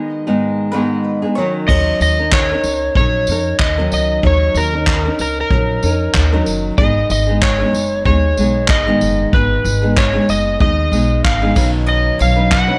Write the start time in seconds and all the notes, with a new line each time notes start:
Already playing: D#3 G#3 B3 D#4 G#4 D#5
0.27 G#2 D#3 G#3 B3 D#4 G#4
0.72 G#2 D#3 G#3 B3 D#4 G#4 B4
1.22 G#3 B3 D#4 G#4
1.35 D#3 F#3 C#4 D#4 C#5
1.40 A#4
1.68 D#2 F#3 C#4 D#4 A#4 D#5, kick, crash
2.00 D#2 D#5, tambourine
2.19 C#4 D#4 A#4
2.32 C#5, kick, clap
2.52 C#4 D#4 A#4
2.64 C#2, tambourine
2.95 A#1 F#3 C#4 D#4 C#5, kick
3.00 A#4
3.27 F2 C#4 D#4, tambourine
3.31 A#4
3.59 D#2 D#5, kick, clap
3.78 D#3 F#3 C#4 D#4 A#4
3.92 C#2 D#5, tambourine
4.23 D#2 F#3 C#4 D#4 A#4 C#5, kick
4.55 D#2 A#4, tambourine
4.73 C#4 D#4 A#4
4.87 kick, clap
5.05 C#4 D#4 A#4
5.19 C#2 A#4, tambourine
5.41 A#4
5.50 A#1 F#3 C#4 D#4 A#4, kick
5.83 F2 C#4 D#4 A#4, tambourine
6.14 D#2, kick, clap
6.32 D#3 F#3 C#4 D#4 A#4
6.46 F#1, tambourine
6.78 G#1 G#3 B3 D#4 G#4 D#5, kick
7.10 G#1 D#5, tambourine
7.27 G#3 B3 D#4 G#4
7.42 C#5, kick, clap
7.60 G#3 B3 D#4 G#4
7.73 F#1, tambourine
8.05 D#2 G#3 B3 D#4 G#4 C#5, kick
8.37 B1 G#3 B3 D#4 G#4, tambourine
8.68 G#1 D#5, kick, clap
8.87 G#2 D#3 G#3 B3 D#4 G#4
9.01 F#1, tambourine
9.33 G#1 G#3 B3 D#4 G#4 B4, kick
9.65 G#1, tambourine
9.82 G#3 B3 D#4 G#4
9.97 C#5, kick, clap
10.13 G#3 B3 D#4 G#4
10.29 F#1 D#5, tambourine
10.59 D#2 G#3 B3 D#4 G#4 D#5, kick
10.92 B1 G#3 B3 D#4 G#4, tambourine
11.25 G#1 F5, kick, clap
11.42 G#2 D#3 G#3 B3 D#4 G#4
11.55 B1 B2 D#3 F#3 C#4 D#4 B4, kick, tambourine, crash
11.86 D#5
12.19 B1 C#5 F5, tambourine
12.36 F#3 C#4 D#4 B4
12.52 F#5, kick, clap
12.67 F#3 C#4 D#4 B4